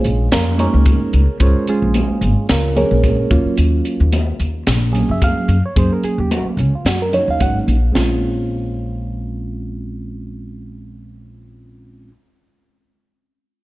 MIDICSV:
0, 0, Header, 1, 5, 480
1, 0, Start_track
1, 0, Key_signature, -5, "minor"
1, 0, Tempo, 546448
1, 1231, Time_signature, 4, 2, 24, 8
1, 11979, End_track
2, 0, Start_track
2, 0, Title_t, "Reed electric piano"
2, 0, Program_c, 0, 4
2, 0, Note_on_c, 0, 56, 64
2, 0, Note_on_c, 0, 61, 62
2, 0, Note_on_c, 0, 65, 61
2, 0, Note_on_c, 0, 68, 76
2, 247, Note_off_c, 0, 68, 0
2, 248, Note_off_c, 0, 61, 0
2, 250, Note_off_c, 0, 56, 0
2, 250, Note_off_c, 0, 65, 0
2, 289, Note_on_c, 0, 70, 79
2, 294, Note_on_c, 0, 58, 59
2, 296, Note_on_c, 0, 65, 62
2, 297, Note_on_c, 0, 61, 59
2, 500, Note_off_c, 0, 58, 0
2, 501, Note_off_c, 0, 61, 0
2, 508, Note_on_c, 0, 56, 64
2, 510, Note_on_c, 0, 58, 62
2, 511, Note_on_c, 0, 61, 61
2, 514, Note_off_c, 0, 70, 0
2, 515, Note_on_c, 0, 63, 69
2, 518, Note_off_c, 0, 65, 0
2, 524, Note_on_c, 0, 70, 62
2, 525, Note_on_c, 0, 73, 82
2, 528, Note_on_c, 0, 68, 62
2, 1061, Note_off_c, 0, 56, 0
2, 1063, Note_off_c, 0, 58, 0
2, 1063, Note_off_c, 0, 61, 0
2, 1065, Note_off_c, 0, 63, 0
2, 1201, Note_off_c, 0, 70, 0
2, 1201, Note_off_c, 0, 73, 0
2, 1203, Note_off_c, 0, 68, 0
2, 1226, Note_on_c, 0, 56, 59
2, 1231, Note_on_c, 0, 72, 59
2, 1233, Note_on_c, 0, 61, 62
2, 1233, Note_on_c, 0, 65, 71
2, 1250, Note_on_c, 0, 68, 59
2, 1251, Note_on_c, 0, 73, 76
2, 1254, Note_on_c, 0, 70, 56
2, 1473, Note_off_c, 0, 68, 0
2, 1473, Note_off_c, 0, 73, 0
2, 1475, Note_off_c, 0, 56, 0
2, 1475, Note_off_c, 0, 70, 0
2, 1478, Note_off_c, 0, 61, 0
2, 1478, Note_off_c, 0, 65, 0
2, 1485, Note_on_c, 0, 56, 62
2, 1486, Note_on_c, 0, 68, 73
2, 1488, Note_on_c, 0, 61, 58
2, 1488, Note_on_c, 0, 65, 59
2, 1958, Note_off_c, 0, 72, 0
2, 2160, Note_off_c, 0, 56, 0
2, 2160, Note_off_c, 0, 68, 0
2, 2162, Note_off_c, 0, 61, 0
2, 2162, Note_off_c, 0, 65, 0
2, 2204, Note_on_c, 0, 70, 67
2, 2211, Note_on_c, 0, 61, 51
2, 2211, Note_on_c, 0, 65, 56
2, 2213, Note_on_c, 0, 58, 54
2, 2413, Note_off_c, 0, 58, 0
2, 2416, Note_off_c, 0, 61, 0
2, 2422, Note_on_c, 0, 56, 71
2, 2424, Note_on_c, 0, 58, 62
2, 2425, Note_off_c, 0, 70, 0
2, 2427, Note_on_c, 0, 61, 60
2, 2429, Note_on_c, 0, 68, 72
2, 2432, Note_off_c, 0, 65, 0
2, 2432, Note_on_c, 0, 73, 76
2, 2436, Note_on_c, 0, 70, 61
2, 2892, Note_off_c, 0, 58, 0
2, 2893, Note_off_c, 0, 61, 0
2, 2899, Note_on_c, 0, 54, 70
2, 2903, Note_off_c, 0, 56, 0
2, 2903, Note_on_c, 0, 58, 65
2, 2903, Note_on_c, 0, 61, 58
2, 2907, Note_off_c, 0, 68, 0
2, 2907, Note_on_c, 0, 65, 69
2, 3113, Note_off_c, 0, 73, 0
2, 3114, Note_off_c, 0, 70, 0
2, 3673, Note_off_c, 0, 54, 0
2, 3675, Note_off_c, 0, 58, 0
2, 3675, Note_off_c, 0, 61, 0
2, 3677, Note_off_c, 0, 65, 0
2, 4321, Note_on_c, 0, 54, 65
2, 4324, Note_on_c, 0, 58, 56
2, 4326, Note_on_c, 0, 61, 55
2, 4330, Note_on_c, 0, 68, 70
2, 4492, Note_on_c, 0, 76, 65
2, 4589, Note_off_c, 0, 76, 0
2, 4601, Note_on_c, 0, 77, 89
2, 4885, Note_off_c, 0, 54, 0
2, 4886, Note_off_c, 0, 58, 0
2, 4887, Note_off_c, 0, 61, 0
2, 4889, Note_off_c, 0, 68, 0
2, 4938, Note_off_c, 0, 77, 0
2, 4968, Note_on_c, 0, 73, 65
2, 5056, Note_on_c, 0, 54, 56
2, 5060, Note_on_c, 0, 58, 57
2, 5062, Note_on_c, 0, 61, 55
2, 5065, Note_on_c, 0, 68, 68
2, 5067, Note_off_c, 0, 73, 0
2, 5081, Note_on_c, 0, 72, 74
2, 5199, Note_off_c, 0, 72, 0
2, 5205, Note_on_c, 0, 70, 60
2, 5298, Note_off_c, 0, 68, 0
2, 5305, Note_off_c, 0, 70, 0
2, 5308, Note_on_c, 0, 68, 73
2, 5433, Note_off_c, 0, 68, 0
2, 5445, Note_on_c, 0, 67, 68
2, 5546, Note_off_c, 0, 67, 0
2, 5564, Note_on_c, 0, 66, 68
2, 5681, Note_off_c, 0, 66, 0
2, 5691, Note_off_c, 0, 58, 0
2, 5702, Note_on_c, 0, 58, 45
2, 5780, Note_off_c, 0, 61, 0
2, 5789, Note_off_c, 0, 54, 0
2, 5790, Note_on_c, 0, 61, 56
2, 5794, Note_off_c, 0, 58, 0
2, 5914, Note_off_c, 0, 61, 0
2, 5931, Note_on_c, 0, 65, 58
2, 6029, Note_off_c, 0, 65, 0
2, 6041, Note_on_c, 0, 66, 70
2, 6160, Note_off_c, 0, 66, 0
2, 6168, Note_on_c, 0, 70, 67
2, 6253, Note_on_c, 0, 54, 59
2, 6257, Note_on_c, 0, 58, 57
2, 6259, Note_on_c, 0, 63, 59
2, 6260, Note_on_c, 0, 61, 52
2, 6267, Note_off_c, 0, 70, 0
2, 6273, Note_on_c, 0, 73, 83
2, 6396, Note_off_c, 0, 73, 0
2, 6417, Note_on_c, 0, 77, 72
2, 6512, Note_off_c, 0, 77, 0
2, 6516, Note_on_c, 0, 78, 73
2, 6656, Note_off_c, 0, 78, 0
2, 6811, Note_off_c, 0, 54, 0
2, 6814, Note_off_c, 0, 58, 0
2, 6815, Note_off_c, 0, 61, 0
2, 6815, Note_off_c, 0, 63, 0
2, 6959, Note_on_c, 0, 56, 59
2, 6972, Note_on_c, 0, 60, 55
2, 6980, Note_on_c, 0, 61, 57
2, 6993, Note_on_c, 0, 65, 73
2, 10603, Note_off_c, 0, 56, 0
2, 10615, Note_off_c, 0, 60, 0
2, 10624, Note_off_c, 0, 61, 0
2, 10636, Note_off_c, 0, 65, 0
2, 11979, End_track
3, 0, Start_track
3, 0, Title_t, "Upright bass"
3, 0, Program_c, 1, 32
3, 46, Note_on_c, 1, 34, 78
3, 233, Note_off_c, 1, 34, 0
3, 278, Note_on_c, 1, 41, 79
3, 573, Note_off_c, 1, 41, 0
3, 648, Note_on_c, 1, 37, 73
3, 838, Note_off_c, 1, 37, 0
3, 996, Note_on_c, 1, 37, 81
3, 1099, Note_off_c, 1, 37, 0
3, 1232, Note_on_c, 1, 37, 80
3, 1336, Note_off_c, 1, 37, 0
3, 1600, Note_on_c, 1, 34, 84
3, 1792, Note_off_c, 1, 34, 0
3, 1943, Note_on_c, 1, 32, 82
3, 2050, Note_off_c, 1, 32, 0
3, 2191, Note_on_c, 1, 37, 75
3, 2486, Note_off_c, 1, 37, 0
3, 2557, Note_on_c, 1, 34, 79
3, 2836, Note_off_c, 1, 34, 0
3, 2908, Note_on_c, 1, 39, 94
3, 3012, Note_off_c, 1, 39, 0
3, 3145, Note_on_c, 1, 39, 73
3, 3337, Note_off_c, 1, 39, 0
3, 3515, Note_on_c, 1, 39, 83
3, 3795, Note_off_c, 1, 39, 0
3, 3863, Note_on_c, 1, 39, 77
3, 4055, Note_off_c, 1, 39, 0
3, 4102, Note_on_c, 1, 34, 83
3, 4400, Note_off_c, 1, 34, 0
3, 4471, Note_on_c, 1, 42, 83
3, 4664, Note_off_c, 1, 42, 0
3, 4816, Note_on_c, 1, 42, 77
3, 4924, Note_off_c, 1, 42, 0
3, 5064, Note_on_c, 1, 42, 77
3, 5168, Note_off_c, 1, 42, 0
3, 5431, Note_on_c, 1, 39, 75
3, 5624, Note_off_c, 1, 39, 0
3, 5772, Note_on_c, 1, 37, 76
3, 5881, Note_off_c, 1, 37, 0
3, 6015, Note_on_c, 1, 42, 64
3, 6316, Note_off_c, 1, 42, 0
3, 6391, Note_on_c, 1, 39, 65
3, 6480, Note_off_c, 1, 39, 0
3, 6506, Note_on_c, 1, 32, 63
3, 6721, Note_off_c, 1, 32, 0
3, 6743, Note_on_c, 1, 34, 65
3, 6960, Note_off_c, 1, 34, 0
3, 6989, Note_on_c, 1, 34, 76
3, 10632, Note_off_c, 1, 34, 0
3, 11979, End_track
4, 0, Start_track
4, 0, Title_t, "Muted upright bass strokes"
4, 1473, Note_on_c, 9, 29, 32
4, 1561, Note_off_c, 9, 29, 0
4, 1841, Note_on_c, 9, 29, 31
4, 1929, Note_off_c, 9, 29, 0
4, 3033, Note_on_c, 9, 29, 32
4, 3120, Note_off_c, 9, 29, 0
4, 5299, Note_on_c, 9, 29, 29
4, 5387, Note_off_c, 9, 29, 0
4, 5669, Note_on_c, 9, 29, 30
4, 5757, Note_off_c, 9, 29, 0
4, 11979, End_track
5, 0, Start_track
5, 0, Title_t, "Drums"
5, 39, Note_on_c, 9, 42, 52
5, 127, Note_off_c, 9, 42, 0
5, 279, Note_on_c, 9, 42, 77
5, 283, Note_on_c, 9, 38, 96
5, 367, Note_off_c, 9, 42, 0
5, 371, Note_off_c, 9, 38, 0
5, 518, Note_on_c, 9, 42, 55
5, 524, Note_on_c, 9, 62, 24
5, 524, Note_on_c, 9, 63, 60
5, 606, Note_off_c, 9, 42, 0
5, 612, Note_off_c, 9, 62, 0
5, 612, Note_off_c, 9, 63, 0
5, 752, Note_on_c, 9, 42, 83
5, 755, Note_on_c, 9, 36, 78
5, 761, Note_on_c, 9, 62, 28
5, 761, Note_on_c, 9, 63, 73
5, 840, Note_off_c, 9, 42, 0
5, 843, Note_off_c, 9, 36, 0
5, 849, Note_off_c, 9, 62, 0
5, 849, Note_off_c, 9, 63, 0
5, 994, Note_on_c, 9, 42, 52
5, 1082, Note_off_c, 9, 42, 0
5, 1229, Note_on_c, 9, 42, 70
5, 1232, Note_on_c, 9, 36, 88
5, 1233, Note_on_c, 9, 62, 25
5, 1317, Note_off_c, 9, 42, 0
5, 1320, Note_off_c, 9, 36, 0
5, 1321, Note_off_c, 9, 62, 0
5, 1470, Note_on_c, 9, 42, 52
5, 1476, Note_on_c, 9, 62, 26
5, 1557, Note_off_c, 9, 42, 0
5, 1563, Note_off_c, 9, 62, 0
5, 1705, Note_on_c, 9, 42, 68
5, 1714, Note_on_c, 9, 63, 81
5, 1793, Note_off_c, 9, 42, 0
5, 1802, Note_off_c, 9, 63, 0
5, 1948, Note_on_c, 9, 42, 50
5, 2036, Note_off_c, 9, 42, 0
5, 2187, Note_on_c, 9, 42, 75
5, 2190, Note_on_c, 9, 38, 99
5, 2275, Note_off_c, 9, 42, 0
5, 2278, Note_off_c, 9, 38, 0
5, 2428, Note_on_c, 9, 42, 46
5, 2429, Note_on_c, 9, 62, 26
5, 2429, Note_on_c, 9, 63, 62
5, 2429, Note_on_c, 9, 64, 55
5, 2516, Note_off_c, 9, 42, 0
5, 2517, Note_off_c, 9, 62, 0
5, 2517, Note_off_c, 9, 63, 0
5, 2517, Note_off_c, 9, 64, 0
5, 2667, Note_on_c, 9, 36, 74
5, 2667, Note_on_c, 9, 42, 72
5, 2669, Note_on_c, 9, 62, 30
5, 2669, Note_on_c, 9, 63, 70
5, 2755, Note_off_c, 9, 36, 0
5, 2755, Note_off_c, 9, 42, 0
5, 2757, Note_off_c, 9, 62, 0
5, 2757, Note_off_c, 9, 63, 0
5, 2906, Note_on_c, 9, 36, 90
5, 2906, Note_on_c, 9, 42, 49
5, 2993, Note_off_c, 9, 42, 0
5, 2994, Note_off_c, 9, 36, 0
5, 3139, Note_on_c, 9, 42, 74
5, 3148, Note_on_c, 9, 62, 24
5, 3227, Note_off_c, 9, 42, 0
5, 3236, Note_off_c, 9, 62, 0
5, 3382, Note_on_c, 9, 42, 56
5, 3387, Note_on_c, 9, 62, 28
5, 3469, Note_off_c, 9, 42, 0
5, 3475, Note_off_c, 9, 62, 0
5, 3622, Note_on_c, 9, 42, 67
5, 3627, Note_on_c, 9, 63, 79
5, 3710, Note_off_c, 9, 42, 0
5, 3715, Note_off_c, 9, 63, 0
5, 3862, Note_on_c, 9, 42, 48
5, 3950, Note_off_c, 9, 42, 0
5, 4100, Note_on_c, 9, 42, 73
5, 4104, Note_on_c, 9, 38, 94
5, 4188, Note_off_c, 9, 42, 0
5, 4191, Note_off_c, 9, 38, 0
5, 4346, Note_on_c, 9, 42, 45
5, 4347, Note_on_c, 9, 63, 59
5, 4433, Note_off_c, 9, 42, 0
5, 4434, Note_off_c, 9, 63, 0
5, 4584, Note_on_c, 9, 36, 69
5, 4584, Note_on_c, 9, 42, 79
5, 4588, Note_on_c, 9, 62, 28
5, 4588, Note_on_c, 9, 63, 65
5, 4671, Note_off_c, 9, 36, 0
5, 4672, Note_off_c, 9, 42, 0
5, 4676, Note_off_c, 9, 62, 0
5, 4676, Note_off_c, 9, 63, 0
5, 4820, Note_on_c, 9, 42, 50
5, 4908, Note_off_c, 9, 42, 0
5, 5063, Note_on_c, 9, 36, 83
5, 5063, Note_on_c, 9, 42, 65
5, 5068, Note_on_c, 9, 62, 23
5, 5151, Note_off_c, 9, 36, 0
5, 5151, Note_off_c, 9, 42, 0
5, 5156, Note_off_c, 9, 62, 0
5, 5301, Note_on_c, 9, 42, 47
5, 5309, Note_on_c, 9, 62, 23
5, 5389, Note_off_c, 9, 42, 0
5, 5397, Note_off_c, 9, 62, 0
5, 5544, Note_on_c, 9, 42, 62
5, 5546, Note_on_c, 9, 63, 73
5, 5632, Note_off_c, 9, 42, 0
5, 5633, Note_off_c, 9, 63, 0
5, 5785, Note_on_c, 9, 42, 42
5, 5872, Note_off_c, 9, 42, 0
5, 6024, Note_on_c, 9, 42, 71
5, 6027, Note_on_c, 9, 38, 89
5, 6112, Note_off_c, 9, 42, 0
5, 6115, Note_off_c, 9, 38, 0
5, 6264, Note_on_c, 9, 64, 52
5, 6265, Note_on_c, 9, 42, 45
5, 6352, Note_off_c, 9, 64, 0
5, 6353, Note_off_c, 9, 42, 0
5, 6504, Note_on_c, 9, 42, 64
5, 6504, Note_on_c, 9, 62, 27
5, 6504, Note_on_c, 9, 63, 61
5, 6505, Note_on_c, 9, 36, 65
5, 6592, Note_off_c, 9, 42, 0
5, 6592, Note_off_c, 9, 62, 0
5, 6592, Note_off_c, 9, 63, 0
5, 6593, Note_off_c, 9, 36, 0
5, 6746, Note_on_c, 9, 42, 49
5, 6834, Note_off_c, 9, 42, 0
5, 6983, Note_on_c, 9, 62, 64
5, 6986, Note_on_c, 9, 38, 72
5, 7071, Note_off_c, 9, 62, 0
5, 7074, Note_off_c, 9, 38, 0
5, 11979, End_track
0, 0, End_of_file